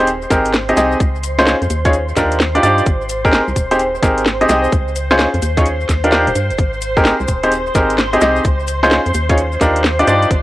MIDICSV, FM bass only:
0, 0, Header, 1, 2, 480
1, 0, Start_track
1, 0, Key_signature, -4, "major"
1, 0, Tempo, 465116
1, 1037, Time_signature, 4, 2, 24, 8
1, 10757, End_track
2, 0, Start_track
2, 0, Title_t, "FM bass"
2, 0, Program_c, 0, 39
2, 0, Note_on_c, 0, 27, 92
2, 276, Note_off_c, 0, 27, 0
2, 315, Note_on_c, 0, 32, 96
2, 756, Note_off_c, 0, 32, 0
2, 795, Note_on_c, 0, 36, 88
2, 986, Note_off_c, 0, 36, 0
2, 1035, Note_on_c, 0, 37, 90
2, 1598, Note_off_c, 0, 37, 0
2, 1670, Note_on_c, 0, 41, 86
2, 1731, Note_off_c, 0, 41, 0
2, 1756, Note_on_c, 0, 39, 90
2, 2197, Note_off_c, 0, 39, 0
2, 2235, Note_on_c, 0, 39, 95
2, 2676, Note_off_c, 0, 39, 0
2, 2716, Note_on_c, 0, 43, 91
2, 2907, Note_off_c, 0, 43, 0
2, 2955, Note_on_c, 0, 32, 97
2, 3518, Note_off_c, 0, 32, 0
2, 3591, Note_on_c, 0, 36, 83
2, 3651, Note_off_c, 0, 36, 0
2, 3675, Note_on_c, 0, 27, 96
2, 4116, Note_off_c, 0, 27, 0
2, 4155, Note_on_c, 0, 32, 93
2, 4596, Note_off_c, 0, 32, 0
2, 4636, Note_on_c, 0, 36, 85
2, 4826, Note_off_c, 0, 36, 0
2, 4875, Note_on_c, 0, 37, 94
2, 5438, Note_off_c, 0, 37, 0
2, 5511, Note_on_c, 0, 41, 84
2, 5572, Note_off_c, 0, 41, 0
2, 5596, Note_on_c, 0, 39, 92
2, 6037, Note_off_c, 0, 39, 0
2, 6076, Note_on_c, 0, 39, 93
2, 6467, Note_off_c, 0, 39, 0
2, 6473, Note_on_c, 0, 27, 88
2, 6532, Note_off_c, 0, 27, 0
2, 6557, Note_on_c, 0, 43, 80
2, 6714, Note_on_c, 0, 27, 81
2, 6729, Note_off_c, 0, 43, 0
2, 6773, Note_off_c, 0, 27, 0
2, 6796, Note_on_c, 0, 32, 97
2, 7359, Note_off_c, 0, 32, 0
2, 7435, Note_on_c, 0, 36, 81
2, 7493, Note_off_c, 0, 36, 0
2, 7516, Note_on_c, 0, 27, 98
2, 7957, Note_off_c, 0, 27, 0
2, 7996, Note_on_c, 0, 32, 95
2, 8436, Note_off_c, 0, 32, 0
2, 8479, Note_on_c, 0, 36, 88
2, 8668, Note_off_c, 0, 36, 0
2, 8716, Note_on_c, 0, 37, 95
2, 9279, Note_off_c, 0, 37, 0
2, 9352, Note_on_c, 0, 41, 83
2, 9412, Note_off_c, 0, 41, 0
2, 9438, Note_on_c, 0, 39, 94
2, 9877, Note_off_c, 0, 39, 0
2, 9916, Note_on_c, 0, 39, 91
2, 10357, Note_off_c, 0, 39, 0
2, 10398, Note_on_c, 0, 43, 89
2, 10588, Note_off_c, 0, 43, 0
2, 10636, Note_on_c, 0, 32, 92
2, 10757, Note_off_c, 0, 32, 0
2, 10757, End_track
0, 0, End_of_file